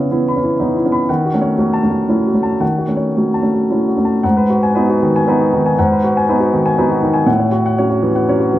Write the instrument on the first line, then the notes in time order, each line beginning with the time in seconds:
grand piano
Already playing: C#3 B3 C#4 E4 C#5 E5
0.11 E3 B3 C#4 E4
0.28 B5
0.36 B3 C#4
0.43 E4
0.60 E3 B3 C#4 D#4
0.76 E4
0.85 B3 C#4
0.92 B5
1.09 D#3 F#5
1.25 F#4
1.34 A3 C#4
1.41 C#5
1.58 F#3 A3 C#4 F#4
1.73 A5
1.83 A3 C#4
1.90 F#4
2.08 F#3 A3 C#4 E4
2.27 F#4
2.34 A3 C#4
2.43 A5
2.60 D#3 F#5
2.78 F#4
2.88 A3 C#4
2.97 C#5
3.16 F#3 A3 C#4 F#4
3.34 A5
3.42 A3 C#4
3.54 F#4
3.70 F#3 A3 C#4 E4
3.88 F#4
3.97 A3 C#4
4.05 A5
4.23 G#2 F#5
4.37 B4
4.50 F#4
4.63 G#5
4.75 F#3 B3 D#4 B4
4.90 F#4
5.03 D#3
5.16 G#5
5.27 F#3 B3 D#4 B4
5.40 F#4
5.53 D#3
5.66 G#5
5.79 G#2 F#5
5.92 B4
6.04 F#4
6.17 G#5
6.29 F#3 B3 D#4 B4
6.40 F#4
6.53 D#3
6.66 G#5
6.77 F#3 B3 D#4 B4
6.90 F#4
7.03 D#3
7.14 G#5
7.26 A2 F#5
7.39 C#5
7.51 F#4
7.66 F#5
7.78 F#3 C#4 C#5
7.90 F#4
8.03 E3
8.16 F#5
8.28 F#3 C#4 C#5
8.40 F#4
8.53 E3